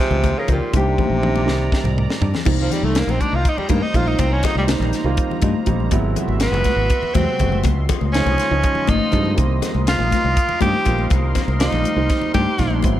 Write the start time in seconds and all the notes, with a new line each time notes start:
Already playing: C3 D#3 F3 G#3 C4 D#4 F4 G#4 C5 C6
0.00 snare
0.11 C#2, high conga, low conga
0.24 kick, closed hi-hat, muted conga
0.38 C#3 A#4
0.48 C#2 A#2, kick, closed hi-hat, low conga
0.53 G4
0.73 C2 C3 D#3 G3 A#3 C4 D4 D5 A#5, kick, closed hi-hat, muted conga
0.77 G4
0.87 low conga
0.98 kick, high conga, low conga
1.10 A#1
1.22 D#3 G3 A#3 C4 D4, high tom, low conga
1.36 muted conga, low conga
1.46 C2 D#3 G3 A#3 C4 D#4, snare
1.72 kick, snare
1.84 C2, mid tom, low conga
1.97 mid tom, high conga
2.10 snare, high conga
2.21 G2, floor tom, low conga
2.34 snare, low conga
2.45 C2 D#3 G3 A#3 C4 D#4 C5 A#5, kick, crash, muted conga
2.62 F3
2.71 G3, snare, closed hi-hat, low conga
2.83 C2 A3, high conga
2.95 A#3, snare, closed hi-hat
3.07 A#1 C4, muted conga, low conga
3.20 D4, kick, closed hi-hat, high conga
3.33 C2 F4
3.45 D#4, kick, closed hi-hat, low conga
3.57 G3, muted fingered electric bass stroke, low conga
3.69 G2 D#3 G3 A#3 C4 D#4, kick, closed hi-hat, muted conga, high conga, low conga
3.82 D#4
3.94 A#1 D#3 G3 A#3 C4 F4, kick, closed hi-hat, low conga
4.07 D#4, high conga
4.19 C2 C4, kick, closed hi-hat, muted conga
4.33 C#4
4.43 D#4, kick, snare, closed hi-hat, low conga
4.55 C2 G3, high conga
4.67 D#3 G3 A#3 C4 D#4, snare, closed hi-hat
4.80 A#1, muted conga, low conga
4.93 snare, closed hi-hat, high conga
5.04 C2 D#3 G3 A#3 C4 F4
5.17 kick, closed hi-hat, low conga
5.29 muted fingered electric bass stroke, low conga
5.42 G2 D#5, kick, closed hi-hat, muted conga, high conga, low conga
5.66 A#1 D#3 G3 A#3 C4 D#4 A#5, kick, closed hi-hat, low conga
5.80 high conga
5.91 G#1 C3 F#3 G#3 B3 E4 F#4 E5 C6, kick, closed hi-hat, muted conga
6.16 closed hi-hat, low conga
6.28 G#1, high conga
6.40 B3, snare, closed hi-hat
6.51 F#1, muted conga, low conga
6.64 kick, snare, closed hi-hat, high conga
6.76 G#1
6.90 kick, closed hi-hat, low conga
7.02 muted fingered electric bass stroke, low conga
7.15 E2 C3 F#3 G#3 B3 C4 F#4, kick, closed hi-hat, muted conga, high conga, low conga
7.39 F#1 C3 F#3 G#3 B3 F#4, kick, closed hi-hat, low conga
7.52 high conga
7.64 C#2 F4 D#5, kick, closed hi-hat, muted conga
7.89 kick, closed hi-hat, low conga
8.01 C#2, high conga
8.13 C#3 F3 G#3 C#4 D#4 C5, snare, closed hi-hat
8.26 C2, muted conga, low conga
8.38 snare, closed hi-hat, high conga
8.51 C#2 C#3 F3 G#3 D#4 C5
8.63 kick, closed hi-hat, low conga
8.75 muted fingered electric bass stroke, low conga
8.87 G#1 D#4, kick, closed hi-hat, muted conga, high conga, low conga
9.00 low conga
9.12 G2 C#3 F3 G#3 C4 D#4, kick, closed hi-hat, low conga
9.25 high conga, low conga
9.36 C2 D#3 G3 A#3 C4 D#4 A#4, kick, closed hi-hat, muted conga
9.62 snare, closed hi-hat, low conga
9.75 C2, high conga
9.87 F4, snare, closed hi-hat
9.99 A#1, muted conga, low conga
10.11 kick, snare, closed hi-hat, high conga
10.24 C2
10.36 kick, closed hi-hat, low conga
10.49 muted fingered electric bass stroke, low conga
10.61 G2 D#3 G3 A#3 C4 F4 G4, kick, closed hi-hat, muted conga, high conga, low conga
10.85 A#1 D#3 G3 A#3 C4 F4, kick, closed hi-hat, low conga
10.99 high conga
11.10 C2, kick, closed hi-hat, muted conga
11.35 kick, snare, closed hi-hat, low conga
11.48 C2, high conga
11.60 D#3 G3 A#3 C4 D#4 F4, snare, closed hi-hat
11.72 A#1, muted conga, low conga
11.84 closed hi-hat, high conga
11.96 C2 D#3 G3 A#3 C4 D#4
12.09 kick, snare, closed hi-hat, low conga
12.21 muted fingered electric bass stroke, low conga
12.34 G2 G4, kick, closed hi-hat, muted conga, high conga, low conga
12.58 A#1 D#3 G3 A#3 C4 D#4, kick, snare, closed hi-hat, low conga
12.70 high conga
12.83 G#1 F#3 G#3 B3 C4 E4 F#4 E5, kick, closed hi-hat, muted conga